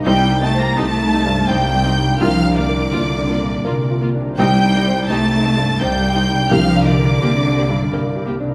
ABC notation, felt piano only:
X:1
M:3/4
L:1/8
Q:1/4=84
K:Cdor
V:1 name="Felt piano"
(3C,, E c (3G E G,, (3c G E | (3C,, D B (3F D B,, (3B F D | (3C,, E c (3G E G,, (3c G E | (3C,, D B (3G D G,, (3B G D |]